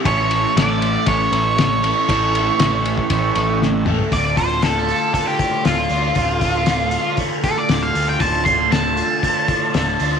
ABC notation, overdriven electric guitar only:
X:1
M:4/4
L:1/8
Q:1/4=118
K:Dm
V:1 name="Overdriven electric guitar"
[A,,E,A,^CEA]6- [A,,E,A,CEA] [A,,E,A,CEA] | [A,,E,A,^CEA]6- [A,,E,A,CEA] [A,,E,A,CEA] | D,, F A, F A, A,, D, F | D,, F A, F A, A,, D, F |
D,, F A, F A, A,, D, F |]